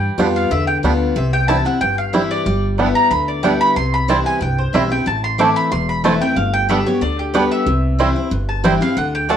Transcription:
Already playing: G3 G5
0.18 F2 G3 B3 D4 F4
0.36 F5
0.51 E2 D3 E5
0.67 G5
0.83 D2 G3 B3 D4 F4
1.16 C2 C3 E5
1.33 G5
1.48 E3 G3 C4 E4 A5
1.65 C4 E4 F#5
1.81 G1 G2 G5
1.98 F5
2.13 E3 G3 C4 E4 E5
2.31 D5
2.46 G1 G3
2.78 G3 B3 D4 E4 B4 G5
2.95 A#5
3.11 D2 D3 B5
3.28 D5
3.43 G3 B3 D4 E4 B4 G5
3.61 B5
3.76 C2 C3 C6
3.94 B5
4.08 E3 G3 C4 E4 C5 G5 A5
4.26 G#5
4.41 C2 G2 G5
4.58 C5
4.73 B1 E3 G3 C4 E4 C5 E5 G5
4.90 C4 E4 G5
5.06 A1 A2 A5
5.24 C6
5.38 E3 A3 C4 E4 C5 A5 D6
5.56 B5
5.71 E1 E2 C6
5.89 B5
6.04 E3 A3 C4 E4 C5 A5
6.21 C4 E4 G5
6.36 G1 G2 F5
6.53 G5
6.68 D3 G3 B3 D4 G4 D5 E5 G5
6.86 B3 G4 C#5
7.01 D2 D3 D5
7.19 G4
7.34 D3 G3 B3 D4 G4 B4 D5 G5
7.51 E5
7.66 C2 C3
7.98 E3 G3 C4 E4 C5 G5
8.16 C4 E4
8.31 G1 G2
8.49 A5
8.63 E3 G3 C4 E4 C5 G5
8.81 C4 E4 F5
8.97 D2 D3 F#5
9.15 G5
9.29 D3 A3 D4 F#4 D5 A5

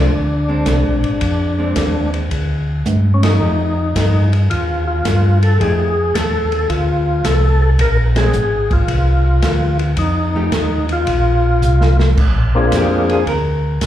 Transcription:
Already playing: D4
0.13 D2
0.48 G#3 C4 D4
0.66 C2, kick, snare, hi-hat pedal, ride
0.86 A#1
1.03 G#1, ride
1.21 F2, kick, ride
1.58 G#3 C4 D4
1.76 D#2, kick, snare, hi-hat pedal, ride
2.14 ride
2.31 D2, kick, ride
2.86 G2, hi-hat pedal, high tom
3.14 C#4
3.23 D#4, snare, ride
3.41 F2 F3 A3 D#4 G4
3.95 G2, kick, snare, hi-hat pedal, ride
4.33 ride
4.50 D#2 F4, kick, ride
4.87 F4
5.05 G2, kick, snare, hi-hat pedal, ride
5.43 A4, ride
5.60 F2 F3 A3 D#4 G4 G#4, kick, ride
6.14 D#2 A4, kick, snare, hi-hat pedal, ride
6.52 ride
6.70 D2 F4, kick, ride
7.24 C2 A4, kick, snare, hi-hat pedal, ride
7.62 A4
7.78 A#1 A#4, kick, ride
8.15 G#3 C4 D4 G#4, snare, ride
8.33 G#1, hi-hat pedal
8.71 F4, kick, ride
8.88 C2, kick, ride
9.42 D2, kick, snare, hi-hat pedal, ride
9.79 ride
9.97 F2 D#4, kick, ride
10.35 F3 A3 D#4 G4
10.52 D#2, kick, snare, hi-hat pedal, ride
10.89 F4, ride
11.07 A#1, kick, ride
11.62 C2, hi-hat pedal
11.81 snare
11.99 snare
12.17 A#1, kick, crash
12.55 A#3 C4 D4 F4 G#4
12.72 F2, kick, snare, hi-hat pedal, ride
12.76 G4
13.09 G#4, ride
13.26 D2 A#4, kick, ride
13.81 A#1, kick, snare, hi-hat pedal, ride

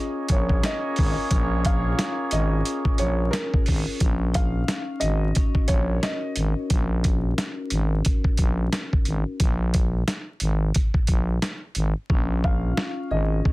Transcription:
Already playing: A#3 C#4 F4 G#4 C#5 D#5
0.28 A#1 A#4 C#5, kick, closed hi-hat
0.49 kick
0.63 C#4 D#5, snare, closed hi-hat
0.96 G#1, kick, open hi-hat
1.31 A#1 C#4, kick, closed hi-hat
1.65 F4 F5, kick, closed hi-hat
1.99 C#4, snare, closed hi-hat
2.31 G#1 G#4 D#5, closed hi-hat
2.65 C#4, closed hi-hat
2.85 kick
2.98 A#1 A#4 C#5, closed hi-hat
3.31 C#4 A#4, snare, closed hi-hat
3.54 kick
3.66 G#1, kick, open hi-hat
4.00 A#1 C#4, kick, closed hi-hat
4.33 D#4 F5, kick, closed hi-hat
4.68 C#4, snare, closed hi-hat
5.00 G#1 F#4 D#5, closed hi-hat
5.35 C#4, kick, closed hi-hat
5.55 kick
5.68 A#1 A#4 C#5, kick, closed hi-hat
6.01 C#4 D#5, snare, closed hi-hat
6.36 G#1, closed hi-hat
6.70 A#1, kick, closed hi-hat
7.04 kick, closed hi-hat
7.38 snare, closed hi-hat
7.70 G#1, closed hi-hat
8.05 kick, closed hi-hat
8.24 kick
8.37 A#1, kick, closed hi-hat
8.73 snare, closed hi-hat
8.93 kick
9.05 G#1, closed hi-hat
9.40 A#1, kick, closed hi-hat
9.74 kick, closed hi-hat
10.08 snare, closed hi-hat
10.40 G#1, closed hi-hat
10.74 kick, closed hi-hat
10.94 kick
11.07 A#1, kick, closed hi-hat
11.42 snare, closed hi-hat
11.75 G#1, closed hi-hat
12.10 A#1 C#4, kick
12.44 F4 F5, kick
12.77 C#4, snare
13.11 G#1 G#4 D#5
13.45 C#4, kick

